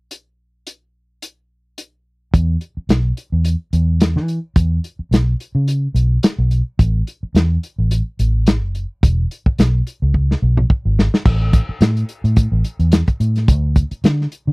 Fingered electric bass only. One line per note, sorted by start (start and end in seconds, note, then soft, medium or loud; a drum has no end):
2.34 2.56 E2 medium
2.77 muted fingered electric bass stroke soft
2.89 3.11 B1 medium
3.32 3.54 E2 medium
3.73 4.18 E2 medium
4.16 4.38 E3 medium
4.56 4.78 E2 medium
4.99 muted fingered electric bass stroke soft
5.11 5.34 B1 medium
5.55 5.87 C#3 medium
5.95 6.17 B1 medium
6.38 6.61 B1 medium
6.79 7.01 A1 medium
7.23 muted fingered electric bass stroke soft
7.35 7.57 E2 medium
7.78 8.00 A1 medium
8.19 8.63 A1 medium
8.63 8.84 F#1 medium
9.03 9.25 E1 medium
9.46 muted fingered electric bass stroke soft
9.59 9.80 B1 medium
10.02 10.34 C#2 medium
10.42 10.64 B1 medium
10.85 11.07 G#1 medium
11.25 11.59 A1 medium
11.69 muted fingered electric bass stroke soft
11.81 12.03 A2 medium
12.24 12.46 A2 medium
12.52 12.62 A1 medium
12.79 13.02 E2 medium
13.20 13.50 A2 medium
13.48 13.82 D2 medium
13.91 muted fingered electric bass stroke soft
14.04 14.26 D3 medium
14.47 14.53 D3 medium